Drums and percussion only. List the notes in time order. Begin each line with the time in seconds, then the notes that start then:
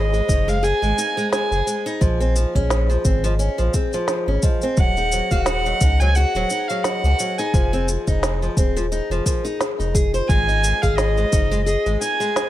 0.14 shaker
0.29 kick, shaker
0.49 shaker
0.64 shaker
0.83 shaker
0.98 shaker
1.18 shaker
1.32 snare, shaker
1.52 shaker
1.68 shaker
1.87 shaker
2.01 kick, shaker
2.21 shaker
2.36 shaker
2.55 kick, shaker
2.70 snare, shaker
2.90 shaker
3.05 kick, shaker
3.24 shaker
3.39 shaker
3.58 shaker
3.74 kick, shaker
3.93 shaker
4.08 snare, shaker
4.42 kick, shaker
4.62 shaker
4.77 kick, shaker
4.97 shaker
5.12 shaker
5.31 kick, shaker
5.46 snare, shaker
5.66 shaker
5.81 kick, shaker
6.00 shaker
6.15 shaker
6.35 shaker
6.50 shaker
6.70 shaker
6.84 snare, shaker
7.04 shaker
7.19 shaker
7.38 shaker
7.54 kick, shaker
7.73 shaker
7.88 shaker
8.07 kick, shaker
8.23 snare, shaker
8.43 shaker
8.57 kick, shaker
8.77 shaker
8.92 shaker
9.12 shaker
9.26 kick, shaker
9.45 shaker
9.61 snare, shaker
9.80 shaker
9.95 kick, shaker
10.14 shaker
10.29 kick, shaker
10.49 shaker
10.64 shaker
10.83 kick, shaker
10.98 snare, shaker
11.17 shaker
11.32 kick, shaker
11.52 shaker
11.67 shaker
11.86 shaker
12.02 shaker
12.21 shaker
12.36 snare, shaker